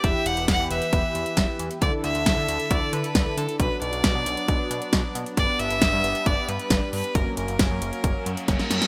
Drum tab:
HH |x-xxx-xxx-xxx-xx|x-xxx-xxx-xxx-xx|x-xxx-xxx-xxx-xx|x-xxx-xxx-xxx-ox|
SD |----o-------o---|----o-------o---|----o-------o---|----o-------o---|
BD |o---o---o---o---|o---o---o---o---|o---o---o---o---|o---o---o---o---|

HH |x-xxx-xxx-xxx-xx|
SD |----o-------oooo|
BD |o---o---o---o---|